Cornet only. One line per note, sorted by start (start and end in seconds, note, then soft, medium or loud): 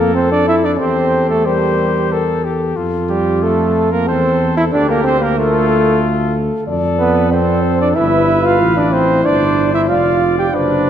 0.00 0.76 A4 medium
0.79 1.44 G4 medium
1.46 2.13 C5 medium
2.12 2.46 A4 medium
2.44 2.78 G4 medium
2.76 4.09 F4 medium
4.07 4.73 A4 medium
4.74 5.37 G4 medium
5.38 6.38 F4 medium
6.68 7.29 A4 medium
7.33 7.95 A4 medium
7.96 9.22 B4 medium
9.24 9.88 C5 medium
9.89 10.52 D5 medium
10.53 10.90 B4 medium